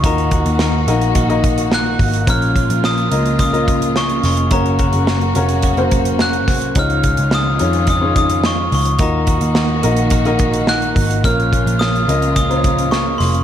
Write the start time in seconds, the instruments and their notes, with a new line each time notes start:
Already playing: string section D#3
0.03 picked electric bass D#2, upright piano A#2 A#3 D#4 F#4 A#4 D#5, clean electric guitar D#3 A#3 D#4 F#4, string section A#3 F#4, glockenspiel A#5, kick, closed hi-hat
0.18 closed hi-hat
0.31 clean electric guitar A#3 D#4 F#4, kick, closed hi-hat
0.46 picked electric bass D#2, closed hi-hat
0.59 clean electric guitar D#3 A#3 D#4 F#4, snare
0.87 picked electric bass A#1, upright piano A#3 D#4 F#4 A#4 D#5, clean electric guitar A#3 D#4 F#4, closed hi-hat
1.01 closed hi-hat
1.15 clean electric guitar D#3 A#3 D#4 F#4, kick, closed hi-hat
1.29 upright piano A#3 D#4 F#4 A#4 D#5, closed hi-hat
1.44 kick, closed hi-hat
1.58 closed hi-hat
1.70 clean electric guitar D#3 A#3 D#4 F#4, snare
1.74 glockenspiel F#6
1.99 picked electric bass G#1, kick, open hi-hat
2.14 closed hi-hat
2.27 picked electric bass A#1, clean electric guitar A#2 F3 A#3 C#4 F4, string section C#3 F4, upright piano A#3 C#4 F4 A#4 C#5, glockenspiel F6, kick, closed hi-hat
2.42 closed hi-hat
2.54 clean electric guitar A#3 C#4 F4, kick, closed hi-hat
2.70 picked electric bass A#1, closed hi-hat
2.83 clean electric guitar F3 A#3 C#4 F4, glockenspiel D#6, snare
2.98 closed hi-hat
3.11 picked electric bass C#2, upright piano A#3 C#4 F4 A#4 D#5, closed hi-hat
3.26 closed hi-hat
3.39 clean electric guitar A#2 F3 A#3 C#4 F4, glockenspiel D#6, kick, closed hi-hat
3.52 upright piano A#3 C#4 F4 A#4 D#5, closed hi-hat
3.68 kick, closed hi-hat
3.82 closed hi-hat
3.95 clean electric guitar F3 A#3 C#4 F4, glockenspiel C#6, snare
4.09 closed hi-hat
4.23 picked electric bass F1, clean electric guitar A#3 C#4 F4, glockenspiel C#6, snare, open hi-hat
4.37 closed hi-hat
4.50 picked electric bass F#1, clean electric guitar F#2 C#3 F#3 A#3 C#4 F#4, upright piano C#3 A#3 C#4 F#4 A#4 C#5, string section F#4, glockenspiel A#5, kick, closed hi-hat
4.66 closed hi-hat
4.79 clean electric guitar F#3 A#3 C#4 F#4, kick, closed hi-hat
4.93 picked electric bass F#1, closed hi-hat
5.06 clean electric guitar F#3 A#3 C#4 F#4, snare
5.21 closed hi-hat
5.35 picked electric bass F1, clean electric guitar F#3 A#3 C#4 F#4, upright piano A#3 C#4 F#4 A#4 C#5, closed hi-hat
5.49 closed hi-hat
5.62 clean electric guitar F#2 C#3 F#3 A#3 C#4 F#4, kick, closed hi-hat
5.77 upright piano A#3 C#4 F#4 A#4 C5, closed hi-hat
5.91 kick, closed hi-hat
6.05 closed hi-hat
6.19 clean electric guitar F#3 A#3 C#4 F#4, glockenspiel F#6, snare
6.33 closed hi-hat
6.48 picked electric bass C2, clean electric guitar F#3 A#3 C#4 F#4, kick, snare, open hi-hat
6.62 closed hi-hat
6.75 picked electric bass C#2, upright piano G#2 C#4 D#4 F4 G#4 C#5, clean electric guitar C#3 F3 G#3 D#4 F4, string section D#3 C#4 F4, glockenspiel F6, kick, closed hi-hat
6.90 closed hi-hat
7.03 clean electric guitar G#3 D#4 F4, kick, closed hi-hat
7.17 picked electric bass C#2, closed hi-hat
7.30 clean electric guitar F3 G#3 D#4 F4, snare
7.35 glockenspiel D#6
7.59 picked electric bass F2, clean electric guitar G#3 D#4 F4, upright piano C#4 D#4 F4 G#4 C#5, closed hi-hat
7.73 closed hi-hat
7.87 clean electric guitar C#3 F3 G#3 D#4 F4, glockenspiel D#6, kick, closed hi-hat
8.01 upright piano C#4 D#4 F4 G#4 C#5
8.16 glockenspiel D#6, kick, closed hi-hat
8.30 closed hi-hat
8.43 clean electric guitar F3 G#3 D#4 F4, glockenspiel C#6, snare
8.72 picked electric bass C#2, glockenspiel C#6, open hi-hat
8.85 closed hi-hat
8.99 picked electric bass D#2, upright piano A#2 A#3 D#4 F#4 A#4 D#5, clean electric guitar D#3 A#3 D#4 F#4, string section D#3 A#3 F#4, glockenspiel A#5, kick, closed hi-hat
9.27 clean electric guitar A#3 D#4 F#4, kick, closed hi-hat
9.41 picked electric bass D#2, closed hi-hat
9.55 clean electric guitar D#3 A#3 D#4 F#4, snare
9.83 picked electric bass A#1, upright piano A#3 D#4 F#4 A#4 D#5, clean electric guitar A#3 D#4 F#4, closed hi-hat
9.97 closed hi-hat
10.10 clean electric guitar D#3 A#3 D#4 F#4, kick, closed hi-hat
10.25 upright piano A#3 D#4 F#4 A#4 D#5, closed hi-hat
10.39 kick, closed hi-hat
10.54 closed hi-hat
10.67 clean electric guitar D#3 A#3 D#4 F#4, glockenspiel F#6, snare
10.82 closed hi-hat
10.96 picked electric bass G#1, kick, open hi-hat
11.11 closed hi-hat
11.24 picked electric bass A#1, clean electric guitar A#2 F3 A#3 C#4 F4, string section C#3 A#3 F4, upright piano A#3 C#4 F4 A#4 C#5, glockenspiel F6, kick, closed hi-hat
11.40 closed hi-hat
11.52 clean electric guitar A#3 C#4 F4, kick, closed hi-hat
11.66 picked electric bass A#1, closed hi-hat
11.79 clean electric guitar F3 A#3 C#4 F4, glockenspiel D#6, snare
11.96 closed hi-hat
12.08 picked electric bass C#2, upright piano A#3 C#4 F4 A#4 D#5, closed hi-hat
12.22 closed hi-hat
12.36 clean electric guitar A#2 F3 A#3 C#4 F4, glockenspiel D#6, kick, closed hi-hat
12.49 upright piano A#3 C#4 F4 A#4 C5, closed hi-hat
12.56 upright piano C#5
12.64 kick, closed hi-hat
12.79 closed hi-hat
12.91 clean electric guitar F3 A#3 C#4 F4, glockenspiel C#6, snare
13.18 picked electric bass F1, glockenspiel C6, snare, open hi-hat
13.35 closed hi-hat